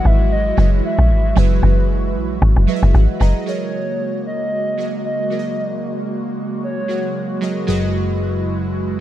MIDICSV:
0, 0, Header, 1, 6, 480
1, 0, Start_track
1, 0, Tempo, 526316
1, 1248, Time_signature, 4, 2, 24, 8
1, 8210, End_track
2, 0, Start_track
2, 0, Title_t, "Soft synth lead"
2, 0, Program_c, 0, 80
2, 56, Note_on_c, 0, 76, 108
2, 292, Note_off_c, 0, 76, 0
2, 295, Note_on_c, 0, 75, 106
2, 515, Note_off_c, 0, 75, 0
2, 536, Note_on_c, 0, 75, 95
2, 642, Note_off_c, 0, 75, 0
2, 775, Note_on_c, 0, 76, 110
2, 1255, Note_on_c, 0, 71, 90
2, 1268, Note_off_c, 0, 76, 0
2, 1971, Note_off_c, 0, 71, 0
2, 3172, Note_on_c, 0, 73, 106
2, 3853, Note_off_c, 0, 73, 0
2, 3890, Note_on_c, 0, 75, 115
2, 4572, Note_off_c, 0, 75, 0
2, 4608, Note_on_c, 0, 75, 102
2, 5531, Note_off_c, 0, 75, 0
2, 6052, Note_on_c, 0, 73, 110
2, 6733, Note_off_c, 0, 73, 0
2, 8210, End_track
3, 0, Start_track
3, 0, Title_t, "Synth keys"
3, 0, Program_c, 1, 88
3, 0, Control_c, 1, 64, 127
3, 0, Note_on_c, 1, 54, 103
3, 0, Note_on_c, 1, 66, 92
3, 0, Note_on_c, 1, 68, 90
3, 0, Note_on_c, 1, 71, 97
3, 0, Note_on_c, 1, 75, 113
3, 94, Note_off_c, 1, 54, 0
3, 97, Note_off_c, 1, 66, 0
3, 100, Note_off_c, 1, 68, 0
3, 103, Note_off_c, 1, 71, 0
3, 106, Note_off_c, 1, 75, 0
3, 517, Note_on_c, 1, 54, 77
3, 522, Note_on_c, 1, 66, 73
3, 529, Note_on_c, 1, 68, 72
3, 535, Note_on_c, 1, 71, 70
3, 541, Note_on_c, 1, 73, 89
3, 1108, Note_off_c, 1, 54, 0
3, 1110, Note_off_c, 1, 66, 0
3, 1114, Note_off_c, 1, 68, 0
3, 1117, Note_off_c, 1, 71, 0
3, 1119, Note_off_c, 1, 73, 0
3, 1235, Note_on_c, 1, 54, 102
3, 1242, Note_on_c, 1, 66, 93
3, 1248, Note_on_c, 1, 68, 87
3, 1254, Note_on_c, 1, 71, 92
3, 1260, Note_on_c, 1, 76, 107
3, 2014, Note_off_c, 1, 54, 0
3, 2017, Note_off_c, 1, 66, 0
3, 2021, Note_off_c, 1, 68, 0
3, 2023, Note_off_c, 1, 71, 0
3, 2026, Note_off_c, 1, 76, 0
3, 2435, Note_on_c, 1, 54, 94
3, 2442, Note_on_c, 1, 66, 87
3, 2447, Note_on_c, 1, 76, 73
3, 2448, Note_on_c, 1, 68, 85
3, 2454, Note_on_c, 1, 71, 87
3, 2459, Note_on_c, 1, 75, 81
3, 2507, Note_off_c, 1, 76, 0
3, 2517, Note_off_c, 1, 75, 0
3, 2518, Note_on_c, 1, 76, 101
3, 2687, Note_on_c, 1, 78, 74
3, 2835, Note_off_c, 1, 54, 0
3, 2838, Note_off_c, 1, 66, 0
3, 2841, Note_off_c, 1, 68, 0
3, 2844, Note_off_c, 1, 71, 0
3, 2876, Note_off_c, 1, 76, 0
3, 2911, Note_off_c, 1, 78, 0
3, 2915, Note_on_c, 1, 54, 91
3, 2921, Note_on_c, 1, 66, 82
3, 2927, Note_on_c, 1, 68, 86
3, 2927, Note_on_c, 1, 82, 73
3, 2933, Note_on_c, 1, 71, 82
3, 2939, Note_on_c, 1, 75, 106
3, 3118, Note_off_c, 1, 54, 0
3, 3121, Note_off_c, 1, 66, 0
3, 3124, Note_off_c, 1, 68, 0
3, 3127, Note_off_c, 1, 71, 0
3, 3130, Note_off_c, 1, 75, 0
3, 3150, Note_off_c, 1, 82, 0
3, 3155, Note_on_c, 1, 54, 87
3, 3160, Note_on_c, 1, 66, 79
3, 3167, Note_on_c, 1, 68, 86
3, 3173, Note_on_c, 1, 70, 86
3, 3177, Control_c, 1, 64, 0
3, 3179, Note_on_c, 1, 75, 100
3, 3351, Control_c, 1, 64, 127
3, 3934, Note_off_c, 1, 54, 0
3, 3937, Note_off_c, 1, 66, 0
3, 3940, Note_off_c, 1, 68, 0
3, 3943, Note_off_c, 1, 70, 0
3, 3946, Note_off_c, 1, 75, 0
3, 4356, Note_on_c, 1, 54, 73
3, 4362, Note_on_c, 1, 66, 66
3, 4368, Note_on_c, 1, 68, 68
3, 4374, Note_on_c, 1, 70, 66
3, 4381, Note_on_c, 1, 75, 78
3, 4755, Note_off_c, 1, 54, 0
3, 4758, Note_off_c, 1, 66, 0
3, 4761, Note_off_c, 1, 68, 0
3, 4764, Note_off_c, 1, 70, 0
3, 4767, Note_off_c, 1, 75, 0
3, 4835, Note_on_c, 1, 54, 71
3, 4841, Note_on_c, 1, 66, 66
3, 4847, Note_on_c, 1, 68, 65
3, 4853, Note_on_c, 1, 70, 65
3, 4859, Note_on_c, 1, 74, 65
3, 4917, Note_off_c, 1, 74, 0
3, 4917, Note_on_c, 1, 75, 79
3, 5614, Note_off_c, 1, 54, 0
3, 5617, Note_off_c, 1, 66, 0
3, 5620, Note_off_c, 1, 68, 0
3, 5623, Note_off_c, 1, 70, 0
3, 5655, Note_off_c, 1, 75, 0
3, 6275, Note_on_c, 1, 54, 76
3, 6281, Note_on_c, 1, 66, 66
3, 6287, Note_on_c, 1, 68, 66
3, 6293, Note_on_c, 1, 70, 66
3, 6299, Note_on_c, 1, 78, 79
3, 6675, Note_off_c, 1, 54, 0
3, 6678, Note_off_c, 1, 66, 0
3, 6681, Note_off_c, 1, 68, 0
3, 6684, Note_off_c, 1, 70, 0
3, 6687, Note_off_c, 1, 78, 0
3, 6755, Note_on_c, 1, 54, 88
3, 6761, Note_on_c, 1, 66, 78
3, 6768, Note_on_c, 1, 68, 77
3, 6773, Note_on_c, 1, 70, 82
3, 6779, Note_on_c, 1, 75, 96
3, 6958, Note_off_c, 1, 54, 0
3, 6961, Note_off_c, 1, 66, 0
3, 6964, Note_off_c, 1, 68, 0
3, 6967, Note_off_c, 1, 70, 0
3, 6970, Note_off_c, 1, 75, 0
3, 6995, Note_on_c, 1, 54, 112
3, 7001, Note_on_c, 1, 66, 104
3, 7007, Note_on_c, 1, 68, 96
3, 7013, Note_on_c, 1, 71, 100
3, 7019, Control_c, 1, 64, 0
3, 7020, Note_on_c, 1, 75, 119
3, 7170, Control_c, 1, 64, 127
3, 7774, Note_off_c, 1, 54, 0
3, 7777, Note_off_c, 1, 66, 0
3, 7780, Note_off_c, 1, 68, 0
3, 7783, Note_off_c, 1, 71, 0
3, 7786, Note_off_c, 1, 75, 0
3, 8210, End_track
4, 0, Start_track
4, 0, Title_t, "Analog synth pad"
4, 0, Program_c, 2, 89
4, 0, Note_on_c, 2, 52, 79
4, 0, Note_on_c, 2, 56, 72
4, 0, Note_on_c, 2, 64, 71
4, 0, Note_on_c, 2, 66, 87
4, 3130, Note_off_c, 2, 56, 0
4, 3130, Note_off_c, 2, 66, 0
4, 3131, Note_off_c, 2, 52, 0
4, 3131, Note_off_c, 2, 64, 0
4, 3166, Note_on_c, 2, 66, 82
4, 3167, Note_on_c, 2, 56, 68
4, 3167, Note_on_c, 2, 58, 69
4, 3168, Note_on_c, 2, 49, 72
4, 6971, Note_off_c, 2, 58, 0
4, 7008, Note_on_c, 2, 64, 69
4, 8210, Note_off_c, 2, 49, 0
4, 8210, Note_off_c, 2, 56, 0
4, 8210, Note_off_c, 2, 64, 0
4, 8210, Note_off_c, 2, 66, 0
4, 8210, End_track
5, 0, Start_track
5, 0, Title_t, "Log drum bass"
5, 0, Program_c, 3, 39
5, 48, Note_on_c, 3, 32, 89
5, 477, Note_off_c, 3, 32, 0
5, 528, Note_on_c, 3, 30, 96
5, 742, Note_off_c, 3, 30, 0
5, 899, Note_on_c, 3, 34, 93
5, 1007, Note_on_c, 3, 32, 97
5, 1020, Note_off_c, 3, 34, 0
5, 1222, Note_off_c, 3, 32, 0
5, 1247, Note_on_c, 3, 30, 105
5, 1462, Note_off_c, 3, 30, 0
5, 1486, Note_on_c, 3, 30, 102
5, 1968, Note_on_c, 3, 34, 88
5, 1981, Note_off_c, 3, 30, 0
5, 2182, Note_off_c, 3, 34, 0
5, 2207, Note_on_c, 3, 32, 111
5, 2325, Note_off_c, 3, 32, 0
5, 2339, Note_on_c, 3, 30, 99
5, 2436, Note_off_c, 3, 30, 0
5, 2578, Note_on_c, 3, 30, 100
5, 2675, Note_off_c, 3, 30, 0
5, 2686, Note_on_c, 3, 32, 97
5, 2805, Note_off_c, 3, 32, 0
5, 2926, Note_on_c, 3, 30, 92
5, 3045, Note_off_c, 3, 30, 0
5, 8210, End_track
6, 0, Start_track
6, 0, Title_t, "Fingered electric bass"
6, 0, Program_c, 4, 33
6, 7008, Note_on_c, 4, 30, 78
6, 8210, Note_off_c, 4, 30, 0
6, 8210, End_track
0, 0, End_of_file